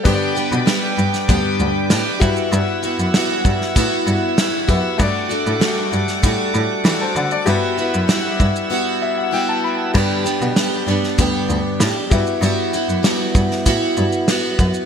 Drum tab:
CC |----------------|----------------|----------------|----------------|
SH |x-xxx-xxx-x-x-xx|x-xxx-x-x-x-x-x-|x-xxx-xxx-x-x-xx|x-xxx-xx--------|
SD |----o--o----o---|----o--o----o---|----o--o----o---|----o-----------|
BD |o-------o-----o-|------o-o-----o-|o-------o-------|------o---------|

CC |x---------------|----------------|
SH |--xxx-x-x-x-x-xx|x-xxx-x-x-xxx-xx|
SD |----o--o----o---|----o--o----o---|
BD |o-------o-----o-|------o-o-----o-|